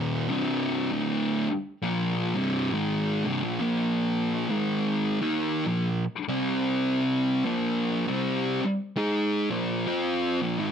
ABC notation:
X:1
M:4/4
L:1/16
Q:"Swing" 1/4=67
K:Bbmix
V:1 name="Distorted electric guitar" clef=bass
[E,,B,,E,] [C,,G,,C,]3 [D,,=A,,D,]2 z2 [B,,F,B,]2 [C,,G,,C,]2 [_A,,E,A,]2 [C,,G,,] [B,,F,] | [B,,F,B,]4 [A,,E,A,]3 [E,B,E]2 [B,,F,]2 z [C,G,C]4- | [C,G,C] [B,,F,B,]3 [C,G,C]2 z2 [A,EA]2 [B,,F,B,]2 [F,CF]2 [B,,F,] [A,,E,] |]